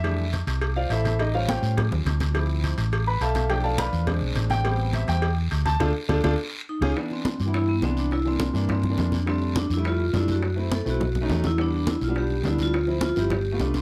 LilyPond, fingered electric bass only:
\new Staff \with { instrumentName = "Fingered electric bass" } { \clef bass \time 4/4 \key c \major \tempo 4 = 208 f,4. c,4. a,,4~ | a,,4. a,4 ees,8 d,4~ | d,4. a,,4. b,,4~ | b,,4. e,4 b,,8 a,,4~ |
a,,4. e,4. d,4 | d,8 r8 d,8 d,8 r4. des,8 | r4. g,4. c,4~ | c,4. g,4. f,4~ |
f,4. f,4. fis,4~ | fis,4. b,,4. e,4~ | e,4. b,,4. d,4~ | d,4. g,,4. c,4 | }